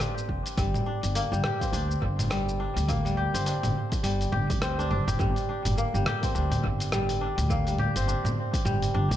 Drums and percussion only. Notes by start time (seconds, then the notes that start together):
0.00 cross-stick, mid tom, open hi-hat, shaker
0.18 shaker
0.29 kick
0.46 open hi-hat, shaker
0.57 kick, open hi-hat, shaker
0.74 mid tom, shaker
1.03 open hi-hat, shaker
1.15 open hi-hat, shaker
1.33 shaker
1.44 cross-stick, mid tom
1.61 kick, open hi-hat, shaker
1.73 open hi-hat, shaker
1.91 shaker
2.02 kick
2.19 mid tom, open hi-hat, shaker
2.31 cross-stick, open hi-hat, shaker
2.49 shaker
2.77 open hi-hat, shaker
2.89 kick, mid tom, open hi-hat, shaker
3.06 open hi-hat, shaker
3.35 open hi-hat, shaker
3.46 open hi-hat, shaker
3.63 mid tom, open hi-hat, shaker
3.92 kick, open hi-hat, shaker
4.04 open hi-hat, shaker
4.21 open hi-hat, shaker
4.33 mid tom
4.50 kick, open hi-hat, shaker
4.62 cross-stick, open hi-hat, shaker
4.80 shaker
5.08 mid tom, open hi-hat, shaker
5.20 kick, mid tom, shaker
5.36 open hi-hat, shaker
5.65 mid tom, open hi-hat, shaker
5.78 shaker
5.95 shaker
6.06 cross-stick, mid tom
6.23 kick, open hi-hat, shaker
6.35 shaker
6.52 mid tom, open hi-hat, shaker
6.64 kick
6.80 open hi-hat, shaker
6.92 cross-stick, mid tom, shaker
7.09 open hi-hat, shaker
7.38 mid tom, open hi-hat, shaker
7.50 kick, shaker
7.67 open hi-hat, shaker
7.79 mid tom
7.96 open hi-hat, shaker
8.09 shaker
8.25 mid tom, shaker
8.54 kick, open hi-hat, shaker
8.66 mid tom, shaker
8.82 open hi-hat, shaker
9.11 kick, mid tom, open hi-hat, shaker